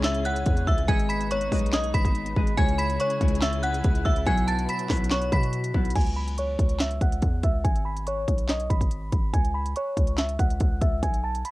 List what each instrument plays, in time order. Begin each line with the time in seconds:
Already playing: 808-style bass C#2, string section C#3 C#4 E4 G#4, harp C#3 G#3 E4 C#5
0.03 synth bell E5 E6, snare, clap, closed hi-hat
0.14 closed hi-hat
0.25 synth bell F#5 F#6, closed hi-hat
0.36 closed hi-hat
0.46 808-style bass E2, kick, closed hi-hat
0.57 closed hi-hat
0.67 808-style bass C#2, synth bell E5 E6, kick
0.78 closed hi-hat
0.87 808-style bass G#1, harp G#3 G#4 B4 D#5, string section G#3 B3 D#4, synth bell G#5 G#6, kick, closed hi-hat
0.99 closed hi-hat
1.09 synth bell B5 B6, closed hi-hat
1.21 closed hi-hat
1.31 synth bell C#5 C#6, closed hi-hat
1.41 closed hi-hat
1.51 808-style bass B1, harp G#3 G#4 B4 D#5, kick, closed hi-hat, open hi-hat
1.59 closed hi-hat
1.66 closed hi-hat
1.72 synth bell D#5 D#6, snare, clap, closed hi-hat
1.84 closed hi-hat
1.94 808-style bass G#1, synth bell B5 B6, kick, closed hi-hat
2.05 kick, closed hi-hat
2.15 closed hi-hat
2.26 closed hi-hat
2.36 808-style bass G#1, harp G#3 G#4 B4 D#5, kick
2.47 closed hi-hat
2.57 808-style bass C#2, harp C#3 G#3 E4 C#5, string section C#3 C#4 E4 G#4, synth bell G#5 G#6, kick, closed hi-hat
2.68 closed hi-hat
2.78 synth bell B5 B6, closed hi-hat
2.90 closed hi-hat
3.00 synth bell C#5 C#6, closed hi-hat
3.10 closed hi-hat
3.20 808-style bass C#2, harp C#3 G#3 E4 C#5, kick, closed hi-hat
3.28 closed hi-hat
3.35 closed hi-hat
3.41 synth bell E5 E6, snare, clap, closed hi-hat
3.53 closed hi-hat
3.63 synth bell F#5 F#6, closed hi-hat
3.74 closed hi-hat
3.84 808-style bass C#2, kick, closed hi-hat
3.95 closed hi-hat
4.05 808-style bass C#2, synth bell E5 E6, kick
4.16 closed hi-hat
4.25 808-style bass B1, harp B2 F#3 E4 B4, string section F#3 B3, synth bell G#5 G#6, kick, closed hi-hat
4.37 closed hi-hat
4.48 synth bell A5 A6, closed hi-hat
4.59 closed hi-hat
4.69 synth bell B5 B6, closed hi-hat
4.79 closed hi-hat
4.89 808-style bass B1, harp B2 F#3 E4 B4, kick, snare, clap, closed hi-hat, open hi-hat
4.97 closed hi-hat
5.04 closed hi-hat
5.10 synth bell C#5 C#6, snare, clap, closed hi-hat
5.22 closed hi-hat
5.32 808-style bass B2, synth bell B5 B6, kick, closed hi-hat
5.43 closed hi-hat
5.53 closed hi-hat
5.64 closed hi-hat
5.74 808-style bass B1, harp B2 F#3 E4 B4, kick
5.85 closed hi-hat
5.90 closed hi-hat
5.95 808-style bass C#2, synth bell G#5 G#6, kick, closed hi-hat, crash
6.01 closed hi-hat
6.07 closed hi-hat
6.16 synth bell B5 B6
6.28 closed hi-hat
6.38 synth bell C#5 C#6, closed hi-hat
6.59 808-style bass C#2, kick, closed hi-hat
6.69 closed hi-hat
6.79 synth bell E5 E6, snare, clap, closed hi-hat
6.91 closed hi-hat
7.01 808-style bass C#2, synth bell F#5 F#6, kick, closed hi-hat
7.12 closed hi-hat
7.22 808-style bass E2, kick, closed hi-hat
7.43 808-style bass C#2, synth bell E5 E6, kick, closed hi-hat
7.64 808-style bass G#1, synth bell G#5 G#6, kick, closed hi-hat
7.76 closed hi-hat
7.85 synth bell B5 B6
7.97 closed hi-hat
8.07 synth bell C#5 C#6, closed hi-hat
8.28 808-style bass B1, kick, closed hi-hat
8.38 closed hi-hat
8.49 synth bell D#5 D#6, snare, clap, closed hi-hat
8.60 closed hi-hat
8.70 808-style bass G#1, synth bell B5 B6, kick, closed hi-hat
8.81 kick, closed hi-hat
8.91 closed hi-hat
9.12 808-style bass G#1, kick, closed hi-hat
9.33 808-style bass C#2, synth bell G#5 G#6, kick, closed hi-hat
9.45 closed hi-hat
9.54 synth bell B5 B6
9.66 closed hi-hat
9.76 synth bell C#5 C#6, closed hi-hat
9.97 808-style bass C#2, kick, closed hi-hat
10.07 closed hi-hat
10.18 synth bell E5 E6, snare, clap, closed hi-hat
10.29 closed hi-hat
10.39 808-style bass C#2, synth bell F#5 F#6, kick, closed hi-hat
10.50 closed hi-hat
10.60 808-style bass C#2, kick, closed hi-hat
10.81 808-style bass C#2, synth bell E5 E6, kick, closed hi-hat
11.03 808-style bass B1, synth bell G#5 G#6, kick, closed hi-hat
11.14 closed hi-hat
11.23 synth bell A5 A6
11.35 closed hi-hat
11.45 synth bell B5 B6, closed hi-hat